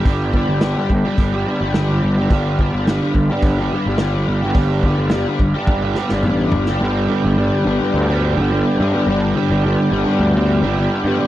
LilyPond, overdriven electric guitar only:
\new Staff \with { instrumentName = "Overdriven electric guitar" } { \time 4/4 \key g \mixolydian \tempo 4 = 106 <g, d g b d' g'>8 <g b d' g'>8 <g, d g b d' g'>16 <g b d' g'>8 <g b d' g'>8 <g b d' g'>16 <g b d' g'>16 <g b d' g'>16 <g, d g b d' g'>16 <g b d' g'>8 <g b d' g'>16 | <g, d g b d' g'>8 <g b d' g'>8 <g, d g b d' g'>16 <g b d' g'>8 <g b d' g'>8 <g b d' g'>16 <g b d' g'>16 <g b d' g'>16 <g, d g b d' g'>16 <g b d' g'>8 <g b d' g'>16 | <g, d g b d' g'>8 <g b d' g'>8 <g, d g b d' g'>16 <g b d' g'>8 <g b d' g'>8 <g b d' g'>16 <g b d' g'>16 <g b d' g'>16 <g, d g b d' g'>16 <g b d' g'>8 <g b d' g'>16 | <g, d g b d'>8 <d g b d'>16 <g b d'>16 <g, d g b d'>8 <d g b d'>16 <g b d'>8 <g b d'>8 <g b d'>16 <g, d g b d'>8 <d g b d'>16 <g b d'>16 |
<g, d g b d'>8 <d g b d'>16 <g b d'>16 <g, d g b d'>8 <d g b d'>16 <g b d'>8 <g b d'>8 <g b d'>16 <g, d g b d'>8 <d g b d'>16 <g b d'>16 | }